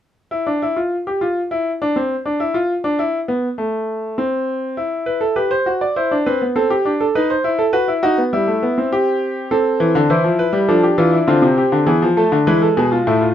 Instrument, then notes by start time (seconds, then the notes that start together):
grand piano
0.31 E4
0.47 D4
0.62 E4
0.76 F4
1.07 G4
1.21 F4
1.51 E4
1.82 D4
1.96 C4
2.26 D4
2.40 E4
2.54 F4
2.84 D4
2.99 E4
3.28 B3
3.58 A3
4.18 C4
4.77 E4
5.06 B4
5.21 A4
5.36 G4 B4
5.51 C5
5.66 F#4
5.81 D5
5.96 E4 C5
6.11 D4
6.26 C4 B4
6.42 B3
6.56 C4 A4
6.70 G4
6.85 D4
7.00 A4
7.15 D#4 B4
7.30 C5
7.44 E4
7.59 A4
7.73 F#4 B4
7.88 E4
8.03 D#4 F#4
8.18 B3
8.33 G3 E4
8.47 A3
8.63 B3
8.78 C4
8.92 G4
9.51 C4 A4
9.80 E3
9.95 D3
10.10 E3 E4 C5
10.24 F3
10.39 B4
10.53 G3
10.68 F3 D4 A4
10.83 G4
10.98 E3 F4
11.13 E4
11.27 D3 C4 F4
11.42 C3
11.58 G4
11.72 D3
11.86 E3 B3 G#4
12.02 F3
12.17 A3 A4
12.32 D3
12.47 E3 G#3 B4
12.62 A4
12.77 B2 G#4
12.92 F4
13.07 A2 A3 E4
13.21 F4